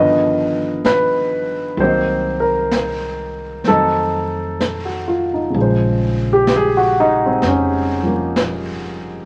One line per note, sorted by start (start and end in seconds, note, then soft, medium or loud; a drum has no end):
0.00 1.74 G1 medium
0.00 1.82 D3 soft
0.00 1.76 D#3 soft
0.00 1.79 F3 soft
0.00 1.80 B3 soft
0.00 0.84 B4 medium
0.00 0.88 D#5 medium
0.85 1.75 B4 medium
0.85 brush sweep soft
0.85 snare soft
0.85 hi-hat pedal soft
1.77 3.61 C2 medium
1.77 3.65 D#3 soft
1.77 3.66 F#3 soft
1.77 2.37 C5 medium
1.77 brush sweep soft
1.81 3.67 A#3 soft
1.81 3.67 C4 medium
1.81 3.65 D#4 soft
2.40 3.30 A#4 medium
2.71 brush sweep soft
2.71 snare soft
2.71 hi-hat pedal soft
3.64 5.52 F2 medium
3.64 5.56 D#3 soft
3.64 5.56 F#3 soft
3.64 5.56 A3 soft
3.64 4.59 A4 medium
3.64 brush sweep soft
3.64 snare soft
3.68 5.57 C4 soft
3.68 5.32 D#4 medium
4.60 5.04 A4 soft
4.60 brush sweep soft
4.60 snare soft
4.60 hi-hat pedal soft
4.85 5.25 F#4 soft
5.08 5.37 F4 soft
5.34 5.66 D#4 soft
5.50 9.25 C#3 soft
5.50 brush sweep soft
5.54 7.39 A#1 medium
5.54 8.01 F3 soft
5.54 9.25 G#3 soft
5.61 9.25 C5 medium
6.33 6.49 G4 medium
6.47 brush sweep soft
6.47 snare soft
6.47 hi-hat pedal soft
6.56 6.83 G#4 medium
6.77 7.09 F#4 medium
7.00 7.21 D#4 medium
7.26 7.42 C4 medium
7.42 9.25 F1 medium
7.42 brush sweep soft
7.42 snare soft
7.47 7.83 C#4 medium
8.03 9.25 F3 soft
8.03 9.25 A#3 soft
8.36 brush sweep soft
8.36 snare soft
8.36 hi-hat pedal soft